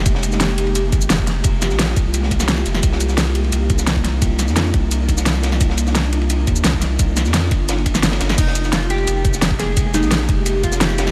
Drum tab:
CC |----------------|----------------|----------------|----------------|
RD |x-x-xxxxx-x-x---|x-x-x-x-x-x-x-x-|x-x-xxxxx-x-x-x-|x-x-x-x-x-x-x-xx|
HH |x-x-x-x-x-x-x-x-|x-x-x-x-x-x-x-x-|x-x-x-x-x-x-x-x-|x-x-x-x-x-x-x-x-|
SH |x-xxx---x-xxx-x-|x-xxx-x-x-xxx-x-|x-xxx---x-xxx-x-|x-xxx---x-xxx-x-|
SD |-o-oo-------o-o-|--oooo---o-ooo-o|-o-oo------oo-o-|--oooo-----ooooo|
BD |o---------o--o--|o-----o---o-----|o---------o--o--|o-----o---o-----|

CC |----------------|----------------|x---------------|----------------|
RD |x-x-xxxxx-x-x-x-|x-x-x-x-xxx-xxxx|x-x-xxxxx-x-x-x-|x-x-x-x-x-x-x-xx|
HH |x-x-x-x-x-x-x-x-|x-x-x-x-x-x-x-x-|x-x-x-x-x-x-x-x-|x-x-x-x-x-x-x-x-|
SH |x-xxx---x-xxx-x-|x-xxx---x-xxx-x-|x-xxx---x-xxx-x-|x-xxx---x-xxx-x-|
SD |-o-oo-------o-o-|--oooo--o--ooooo|-o-oo------oo-o-|--oooo-----ooooo|
BD |o---------o--o--|o-----o---o-----|o---------o--o--|o-----o---o-----|